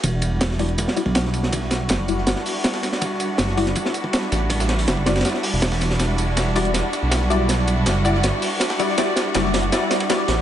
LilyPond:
<<
  \new Staff \with { instrumentName = "Synth stab" } { \time 4/4 \key e \minor \tempo 4 = 161 r4. <g e' fis' d''>4 <g e' fis' d''>8 r4 | r4. <g e' fis' d''>8 r2 | r4. <g e' fis' d''>4 r4. | r4. <g e' fis' d''>8 r2 |
r4. <g e' fis' d''>8 r4. <g e' fis' d''>8 | r4. <g e' fis' d''>8 r4. <g e' fis' d''>8 | <g e' fis' d''>4 <g e' fis' d''>4 <g e' fis' d''>4 <g e' fis' d''>4 | }
  \new Staff \with { instrumentName = "String section" } { \time 4/4 \key e \minor << { fis'1~ | fis'1~ | fis'1~ | fis'1 |
fis'1~ | fis'1~ | fis'1 | } \\ { <g d' e'>1~ | <g d' e'>1~ | <g d' e'>1~ | <g d' e'>1~ |
<g d' e'>1~ | <g d' e'>1~ | <g d' e'>1 | } >> }
  \new Staff \with { instrumentName = "Detuned saw bass" } { \clef bass \time 4/4 \key e \minor e,,2~ e,,16 r8 b,,4~ b,,16~ | b,,4 fis,,4 g,,16 r4. r16 | r4 fis,,4 r4. a,,8~ | a,,4 fis,,4 r8. e,,16 e,,4 |
e,,2~ e,,16 r8 b,,4~ b,,16~ | b,,4 fis,,4 g,,16 r4. r16 | r4 fis,,4 r4. a,,8 | }
  \new DrumStaff \with { instrumentName = "Drums" } \drummode { \time 4/4 <bd cymr tamb>8 <cymr tamb>8 <cymr sn tamb>16 sn16 <hho cymr sn>16 hh16 <bd cymr tamb>16 sn16 <cymr tamb>16 bd16 <cymr sn tamb>16 sn16 <cymr tamb>16 sn16 | <bd cymr tamb>16 sn16 <cymr sn tamb>8 <cymr sn tamb>16 bd16 <cymr tamb>16 sn16 <cymr sn tamb>16 sn16 <hho tamb>8 <cymr sn tamb>16 sn16 <cymr sn tamb>16 sn16 | <bd cymr tamb>8 <cymr tamb>8 <cymr sn tamb>16 sn16 <hho cymr sn>16 <hh sn>16 <bd cymr tamb>16 sn16 <cymr tamb>16 bd16 <cymr sn tamb>16 sn16 <cymr sn tamb>8 | <hho bd cymr sn>16 <sn tamb>16 <cymr sn>16 <hho sn>16 <cymr sn tamb>16 bd16 <cymr sn tamb>16 <cymr sn>32 <cymr sn>32 <cymr sn tamb>16 sn16 <hho tamb>8 <cymr sn tamb>16 sn16 <cymr sn tamb>16 sn16 |
<cymr sn tamb>8 <cymr tamb>8 <cymr sn tamb>16 sn16 <hho cymr sn>16 hh16 <cymr sn tamb>8 <cymr tamb>8 <cymr sn tamb>16 sn16 <cymr tamb>8 | <cymr sn tamb>16 sn16 <cymr tamb>8 <cymr sn tamb>8 <cymr tamb>16 sn16 <cymr sn tamb>8 <hho tamb>8 <cymr sn tamb>16 sn16 <cymr tamb>16 sn16 | <cymr sn tamb>8 <cymr sn tamb>8 <cymr sn tamb>16 sn16 <hho cymr sn>16 hh16 <cymr sn tamb>8 <cymr sn tamb>16 cymr16 <cymr sn tamb>16 sn16 <cymr sn tamb>8 | }
>>